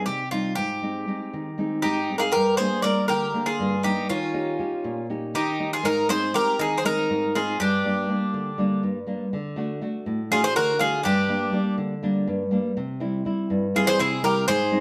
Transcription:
Already playing: nylon-string guitar G3 C4 D#4
0.06 nylon-string guitar C3, bouzouki G4
0.31 nylon-string guitar G3 C4 D#4, bouzouki F4
0.55 nylon-string guitar G#2, bouzouki G4
0.82 nylon-string guitar G#3 C4 D#4
1.08 nylon-string guitar G#3 C4 D#4
1.33 nylon-string guitar D#3
1.58 nylon-string guitar G#3 C4 D#4
1.82 nylon-string guitar G#2, bouzouki D#4 G4
2.10 nylon-string guitar G#3 C4 D#4
2.18 bouzouki F4 G4 G#4 A#4
2.32 nylon-string guitar G2, bouzouki G4 A#4
2.57 nylon-string guitar G3 A#3 D4, bouzouki G#4 C5
2.82 nylon-string guitar G3 A#3 D4, bouzouki A#4 D5
3.08 nylon-string guitar D3, bouzouki G4 A#4
3.34 nylon-string guitar D3 A#3 D4
3.46 bouzouki F4 G#4
3.59 nylon-string guitar G2
3.83 nylon-string guitar G3 A#3 D4, bouzouki D#4 G4
4.09 nylon-string guitar D#3, bouzouki C#4 F4
4.34 nylon-string guitar C#4 D#4 G4
4.59 nylon-string guitar C#4 D#4 G4
4.84 nylon-string guitar A#2
5.10 nylon-string guitar C#4 D#4 G4
5.34 nylon-string guitar D#3, bouzouki D#4 G4
5.59 nylon-string guitar C#4 D#4 G4
5.73 bouzouki F4 G#4
5.83 nylon-string guitar G#2, bouzouki D#4 A#4
6.08 nylon-string guitar G#3 C4 D#4, bouzouki G#4 C5
6.34 nylon-string guitar G#3 C4 D#4, bouzouki G4 A#4
6.59 nylon-string guitar D#3, bouzouki D#4 G#4
6.78 bouzouki G#4 C5
6.84 nylon-string guitar G#3 C4 D#4, bouzouki D#4 A#4
7.10 nylon-string guitar G#2
7.35 nylon-string guitar G#3 C4 D#4, bouzouki F4 G#4
7.60 nylon-string guitar G2, bouzouki D4 G4
7.84 nylon-string guitar G3 A#3 D4
8.09 nylon-string guitar G3 A#3 D4
8.34 nylon-string guitar D3
8.58 nylon-string guitar G3 A#3 D4
8.83 nylon-string guitar G2
9.07 nylon-string guitar G3 A#3 D4
9.33 nylon-string guitar D3
9.56 nylon-string guitar A3 D4 F#4
9.82 nylon-string guitar A3 D4 F#4
10.06 nylon-string guitar A2
10.31 nylon-string guitar A3 D4 F#4, bouzouki F4 G#4
10.44 bouzouki G#4 C5
10.55 nylon-string guitar D3, bouzouki F#4 A#4
10.79 nylon-string guitar A3 D4 F#4, bouzouki F4 G#4
11.03 nylon-string guitar G2, bouzouki D4 G4
11.29 nylon-string guitar G3 A#3 D4
11.53 nylon-string guitar G3 A#3 D4
11.77 nylon-string guitar D3
12.03 nylon-string guitar G3 A#3 D4
12.27 nylon-string guitar G2
12.51 nylon-string guitar G3 A#3 D4
12.77 nylon-string guitar C3
13.00 nylon-string guitar G3 C4 E4
13.25 nylon-string guitar G3 C4 E4
13.50 nylon-string guitar G2
13.75 nylon-string guitar G3 C4 E4, bouzouki F4 G#4
13.87 bouzouki G#4 C5
13.99 nylon-string guitar C3, bouzouki E4 G#4
14.23 nylon-string guitar G3 C4 E4, bouzouki G4 A#4
14.48 nylon-string guitar G#2, bouzouki G#4 C5
14.71 nylon-string guitar G#3 C4 D#4

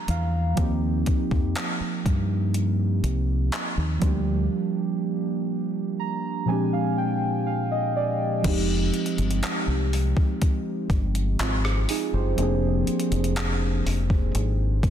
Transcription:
Already playing: synth keys A#5
0.08 fingered electric bass E2, synth keys F5, closed hi-hat
0.55 fingered electric bass D#2, synth keys F3 A#3 C4, kick, closed hi-hat
0.60 synth keys D#4 G4
1.06 kick, closed hi-hat
1.31 fingered electric bass F2, kick
1.56 clap, closed hi-hat
1.80 muted fingered electric bass stroke
2.06 fingered electric bass G2, kick, closed hi-hat
2.54 closed hi-hat
3.04 fingered electric bass C2, closed hi-hat
3.52 clap, closed hi-hat
3.77 fingered electric bass D#2
3.99 fingered electric bass D2, synth keys F3 G3 A#3, kick, closed hi-hat
4.04 synth keys D4 G4
5.99 synth keys A#5
6.45 synth keys A#2 F3 G#3 C4 G#5
6.51 synth keys D4 G4
6.73 synth keys F5
6.98 synth keys G5
7.47 synth keys F5
7.71 synth keys D#5
7.96 synth keys D5
8.42 fingered electric bass F1, synth keys F3 G#3 C4, kick, closed hi-hat, crash
8.47 synth keys D#4 G4
8.94 closed hi-hat
9.06 closed hi-hat
9.18 fingered electric bass G1, closed hi-hat
9.31 closed hi-hat
9.43 clap, closed hi-hat
9.67 fingered electric bass C2
9.93 open hi-hat
10.17 kick
10.42 kick, closed hi-hat
10.90 fingered electric bass G1, kick, closed hi-hat
11.15 closed hi-hat
11.39 fingered electric bass G#1, synth keys C4 F4, clap, closed hi-hat
11.65 cross-stick
11.89 synth keys D#4 G#4, open hi-hat
12.13 fingered electric bass F#1, synth keys G4 C5
12.35 fingered electric bass F1, synth keys F3 A#3 C4, closed hi-hat
12.40 synth keys D4 G#4
12.87 closed hi-hat
13.00 closed hi-hat
13.12 fingered electric bass F1, closed hi-hat
13.24 closed hi-hat
13.36 clap, closed hi-hat
13.86 fingered electric bass F1, open hi-hat
14.10 kick
14.35 fingered electric bass G#1, closed hi-hat
14.83 fingered electric bass A#1, kick, closed hi-hat

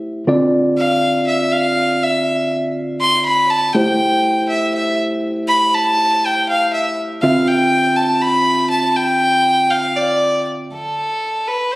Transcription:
Already playing: tine electric piano A3 E4 G4 C5
0.27 tine electric piano D3 C4 F4 D5
0.78 violin F5
1.28 violin E5
1.52 violin F5
2.03 violin E5
3.01 violin C6
3.26 violin B5
3.50 violin A5
3.75 tine electric piano A3 E4 G4 C5, violin G5
4.50 violin E5
4.75 violin E5
5.49 violin B5
5.75 violin A5
6.26 violin G5
6.50 violin F5
6.74 violin E5
7.22 tine electric piano D3 C4 F4 E5, violin F5
7.48 violin G5
7.97 violin A5
8.21 violin B5
8.71 violin A5
8.96 violin G5
9.71 violin F5
9.96 violin D5
10.74 violin A4
11.48 violin B4
11.72 violin C5

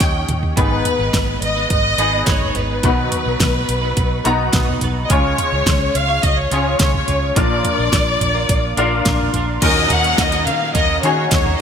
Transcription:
Already playing: grand piano A#2 C#4 D#4 G4 A#4 C#5, violin section G5
0.00 fingered electric bass D#2, kick, snare, closed hi-hat
0.29 fingered electric bass D#2, closed hi-hat, mid tom
0.43 floor tom
0.56 fingered electric bass G#1, clean electric guitar G#2 D#3 G#3 B3 D#4 B4, grand piano G#2 D#3 B3 D#4 G#4 B4, violin section B4, kick, closed hi-hat
0.85 closed hi-hat, floor tom
0.99 fingered electric bass G#1, clean electric guitar G#3 B3 D#4 B4
1.14 fingered electric bass G#1, kick, snare, closed hi-hat
1.41 fingered electric bass G#1, violin section D#5, closed hi-hat
1.55 clean electric guitar G#3 B3 D#4 B4
1.70 fingered electric bass G#1, violin section D#5, kick, closed hi-hat
1.98 fingered electric bass G#1, clean electric guitar G#3 B3 D#4 B4, grand piano B3 D#4 G#4 B4, closed hi-hat
2.26 fingered electric bass G#1, clean electric guitar G#3 B3 D#4 B4, violin section C#5, kick, snare, closed hi-hat
2.41 floor tom
2.54 fingered electric bass G#1, clean electric guitar G#3 B3 D#4 B4, violin section B4, closed hi-hat, floor tom
2.83 fingered electric bass B1, clean electric guitar B2 D#3 F#3 B3 D#4 B4, grand piano B2 F#3 B3 D#4 F#4 B4, kick, closed hi-hat
3.12 closed hi-hat, floor tom
3.25 fingered electric bass B1, clean electric guitar F#3 B3 D#4 B4
3.40 fingered electric bass B1, kick, snare, closed hi-hat
3.69 fingered electric bass B1, closed hi-hat
3.81 clean electric guitar F#3 B3 D#4 B4
3.97 fingered electric bass B1, kick, closed hi-hat
4.24 fingered electric bass B1, clean electric guitar F#3 B3 D#4 B4, grand piano B3 D#4 F#4 A#5, closed hi-hat
4.53 fingered electric bass B1, clean electric guitar F#3 B3 D#4 B4, kick, snare, closed hi-hat
4.68 floor tom
4.81 fingered electric bass B1, clean electric guitar F#3 B3 D#4 B4, closed hi-hat, floor tom
5.05 violin section D#5
5.09 fingered electric bass C#2, clean electric guitar C#3 G#3 C#4 F4 C#5, grand piano C#3 G#3 C#4 F4 G#4 C#5, violin section C#5, kick, closed hi-hat
5.38 closed hi-hat, floor tom
5.52 fingered electric bass C#2, clean electric guitar C#4 F4 C#5
5.66 fingered electric bass C#2, kick, snare, closed hi-hat
5.95 fingered electric bass C#2, violin section F5, closed hi-hat
6.08 clean electric guitar C#4 F4 C#5
6.23 fingered electric bass C#2, violin section D#5, kick, closed hi-hat
6.38 violin section C#5
6.51 fingered electric bass C#2, clean electric guitar G#3 C#4 F4 C#5, grand piano C#4 F4 G#4 C#5, closed hi-hat
6.79 fingered electric bass C#2, clean electric guitar G#3 C#4 F4 C#5, violin section C#5, kick, snare, closed hi-hat
6.94 violin section C#5, floor tom
7.07 fingered electric bass C#2, clean electric guitar G#3 C#4 F4 C#5, closed hi-hat, floor tom
7.36 fingered electric bass A#1, clean electric guitar A#2 F3 A#3 D4 F4 A#4, grand piano A#2 F3 D4 F4 A#4 D5, violin section D5, kick, closed hi-hat
7.65 closed hi-hat, floor tom
7.78 fingered electric bass A#1, clean electric guitar A#3 D4 F4 A#4
7.93 fingered electric bass A#1, kick, snare, closed hi-hat
8.21 fingered electric bass A#1, closed hi-hat, floor tom
8.34 clean electric guitar A#3 D4 F4 A#4
8.49 fingered electric bass A#1, kick, closed hi-hat
8.77 fingered electric bass A#1, clean electric guitar A#3 D4 F4 A#4, grand piano D4 F4 A#4 F5, closed hi-hat
9.05 fingered electric bass A#1, clean electric guitar A#3 D4 F4 A#4, kick, snare, closed hi-hat
9.20 floor tom
9.33 fingered electric bass A#1, clean electric guitar A#3 D4 F4 A#4, closed hi-hat, floor tom
9.61 fingered electric bass D#2, grand piano A#2 C#4 D#4 F#4 A#4, clean electric guitar A#3 C#4 F#4 A#4, violin section D#5, kick, closed hi-hat, crash, downlifter
9.89 fingered electric bass D#2, clean electric guitar A#3 C#4 F#4 A#4, violin section F#5, closed hi-hat, floor tom
10.04 closed hi-hat
10.18 fingered electric bass D#2, violin section D#5, kick, snare, closed hi-hat
10.32 clean electric guitar C#4 F#4 A#4, closed hi-hat
10.46 fingered electric bass D#3, violin section F5, closed hi-hat
10.74 fingered electric bass D#2, clean electric guitar D#3 A#3 C#4 F#4 A#4, violin section D#5, kick, closed hi-hat
11.02 fingered electric bass D#3, clean electric guitar A#3 C#4 F#4 A#4, grand piano C#4 D#4 F#4 G#4, violin section C#5, closed hi-hat
11.31 fingered electric bass D#2, violin section C#5, kick, snare, closed hi-hat
11.45 clean electric guitar C#4 F#4 A#4, floor tom

